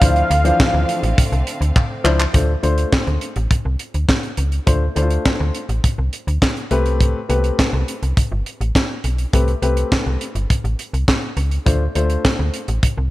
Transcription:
Already playing: F5
0.00 D2 D3 F3 A3 C4 D4 E4 C5 F5, kick, closed hi-hat
0.16 closed hi-hat
0.30 D2, closed hi-hat
0.44 E3 F3 D4 C5, closed hi-hat
0.60 kick, snare, clap
0.74 D2
0.89 closed hi-hat
1.03 A1, closed hi-hat
1.18 kick, closed hi-hat
1.32 C2, closed hi-hat
1.47 closed hi-hat
1.61 D2, closed hi-hat
1.76 kick, clap
2.04 C#2 F3 D4 E4 C5, clap
2.20 clap
2.33 D2 A3 D4 F4 C5, kick, closed hi-hat
2.63 D2 A3 D4 F4 C5, closed hi-hat
2.78 closed hi-hat
2.93 kick, snare, clap
3.07 D2, closed hi-hat
3.21 closed hi-hat
3.36 A1, closed hi-hat
3.51 kick, closed hi-hat
3.65 C2
3.79 closed hi-hat
3.94 D2, closed hi-hat
4.09 kick, snare, clap
4.23 closed hi-hat
4.37 C#2, closed hi-hat
4.52 closed hi-hat
4.66 D2 A3 D4 F4 C5, kick, closed hi-hat
4.95 D2 A3 D4 E4 C5, closed hi-hat
5.02 F4
5.10 closed hi-hat
5.25 kick, snare, clap
5.40 D2
5.55 closed hi-hat
5.69 A1, closed hi-hat
5.84 kick, closed hi-hat
5.98 C2
6.13 closed hi-hat
6.27 D2, closed hi-hat
6.42 kick, snare, clap
6.57 closed hi-hat
6.71 C2 A3 C4 G4 B4, closed hi-hat
6.86 closed hi-hat
7.01 kick, closed hi-hat
7.29 C2 A3 B3 G4 B4, closed hi-hat
7.36 C4
7.44 closed hi-hat
7.59 kick, snare, clap
7.73 C2
7.88 closed hi-hat
8.03 C2, closed hi-hat
8.17 kick, closed hi-hat
8.32 G1
8.46 closed hi-hat
8.61 A1, closed hi-hat
8.75 kick, snare, clap
9.04 B1, closed hi-hat
9.18 closed hi-hat
9.33 C2 A3 C4 G4 B4, kick, closed hi-hat
9.48 closed hi-hat
9.62 C2 A3 C4 G4 B4, closed hi-hat
9.77 closed hi-hat
9.92 kick, snare, clap
10.06 C2
10.21 closed hi-hat
10.35 G1, closed hi-hat
10.50 kick, closed hi-hat
10.64 A1, closed hi-hat
10.79 closed hi-hat
10.93 C2, closed hi-hat
11.08 kick, snare, clap
11.37 C#2, closed hi-hat
11.51 closed hi-hat
11.66 D2 A3 D4 F4 C5, kick, closed hi-hat
11.95 D2 A3 D4 F4 C5, closed hi-hat
12.10 closed hi-hat
12.25 kick, snare, clap
12.39 D2
12.54 closed hi-hat
12.68 A1, closed hi-hat
12.83 kick, closed hi-hat
12.97 C2

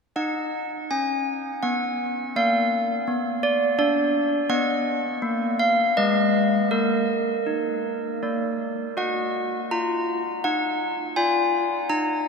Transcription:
0.16 D#4 D#5 F#5
0.91 C#4 G#5
1.63 B3 F#5
2.36 A#3 D5 F5
3.08 B3
3.43 D5
3.78 D4 D5
4.50 B3 D#5 F#5
5.22 A#3
5.59 F5
5.97 G#3 B4 D#5
6.71 A#3 A#4 D#5
7.46 D#4
8.23 A#3 D5
8.97 F#4 D#5 F#5
9.71 F4 A#5
10.44 D#4 F#5
11.16 F4 D5 G#5
11.90 D#4 A#5

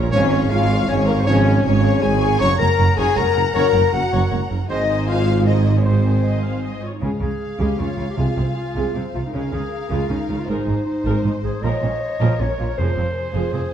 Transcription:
Already playing: A#4 C#5 A#5
0.11 G#1 G#2 C#3 F3 C#4 G#4 C#5 G#5
0.31 G#4 C#5 F5 C#6
0.50 G#1 G#2 F4 G#4 C#5 F5 G#5
0.70 G#4 C#5 F5 C#6
0.87 G#1 G#2 C#4 G#4 C#5 G#5
1.07 A#3 G#4 A#4 C#5 F5 C#6
1.17 C4 C5
1.25 G#1 G#2 C#3 F3 C#4 G#4 C#5 G#5
1.44 G#4 C#5 F5 C#6
1.62 G#1 G#2 C#4 G#4 C#5 G#5
1.82 G#4 C#5 F5 C#6
2.01 G#1 G#2 G#4 C#5 G#5
2.20 G#4 C#5 F5 C#6
2.39 F#1 F#2 C#3 F#3 C#5 F#5 A#5 C#6
2.58 F#1 F#2 A#4 C#5 A#5
2.78 F#1 F#2 A#4
2.96 F#1 F#2 G#4 C#5 G#5
3.16 F#1 F#2 A#4 C#5 A#5
3.35 F#1 F#2 A#4
3.53 F#1 F#2 C#3 F#3 A#4 C#5 A#5
3.72 F#1 F#2 C#5
3.92 F#1 F#2 F#4 A#4 F#5
4.11 F#1 F#2 C#5
4.30 F#1 F#2 C#5
4.50 F#1 F#2 A#4
4.69 G#1 G#2 D#3 G#3 D#4 C5 D#5 G#5
5.08 F4 F5
5.46 D#4 C5 D#5 G#5
5.75 C#4 C#5
5.84 D#3 G#3 C4 C5 D#5 G#5
6.25 D#5
6.44 F5
6.64 D#5
6.82 F4 C#5
6.94 D#4
7.01 C#2 C#3 G#3 C#4 G#4 F5
7.20 C#2 C#3 G#3 C#4 G#4
7.40 F5
7.59 C#2 C#3 G#3 G4 G#4
7.78 C#2 C#3 G#3 C#4 F4 C#5
7.98 C#2 C#3 G#3 F4
8.10 G4
8.16 C2 C3 G#3 F4 G#4
8.37 C2 C3 G#3 C4
8.56 F4
8.75 C2 C3 G#3 G#4
8.94 C2 C3 G#3 C4 C5
9.14 C2 C3 G#3 F4
9.26 D#4
9.32 C#2 C#3 G#3 C#4 G#4 A#4 F5
9.53 C#2 C#3 G#3 C#4 G#4
9.90 C#2 C#3 G#3 F4 G#4
10.10 C#2 C#3 G#3 C#4 D#4
10.29 C#2 C#3 G#3 F4
10.39 F4
10.48 G#1 G#2 G#3 D#4 G#4 A#4 C5
10.67 G#1 G#2 G#3 D#4
10.86 D#4 C5
11.05 G#1 G#2 G#3 A#4
11.24 G#1 G#2 G#3 D#4
11.43 G#1 G#2 G#3 G#4
11.63 A#1 A#2 F3 A#4 C#5 D#5
11.82 A#1 A#2 F3 C#4
12.21 A#1 A#2 F3 A#4
12.40 A#1 A#2 F3 C#4 A#4 C#5
12.59 A#1 A#2 F3 F4
12.78 F1 F2 F3 G#4 C5
12.97 F1 F2 F3 C4
13.16 G#4
13.34 F1 F2 F3 G#4
13.53 F1 F2 F3 C4 G#4

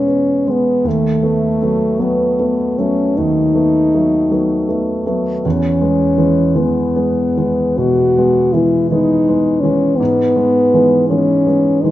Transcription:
Already playing: B2 G#3 B3 C#4
0.08 B3
0.47 G#3 B3
0.84 D#2 A3
1.23 A3 B3
1.62 F#3 A3 B3
1.99 F#3 A3 B3
2.39 A3 B3
2.78 F#3 A3 B3 C#4
3.17 D#2 D#4
3.54 A3 B3
3.94 F#3 A3 B3
4.31 F#3 A3 B3
4.68 A3 B3
5.06 F#3 A3 B3
5.45 E2 C#4
5.81 G#3 B3
6.18 E3 G#3 B3
6.55 E3 G#3 B3
6.96 G#3 B3
7.37 E3 G#3 B3
7.78 B2 F#4
8.18 G#3 B3
8.53 E3 G#3 B3 E4
8.90 E3 G#3 B3 D#4
9.28 G#3 B3
9.61 E3 G#3 C#4
9.65 B3
9.97 G#2 B3
10.36 G#3 B3
10.74 E3 G#3 B3
11.09 E3 G#3 B3 C#4
11.47 G#3 B3
11.82 E3 G#3 B3 D#4

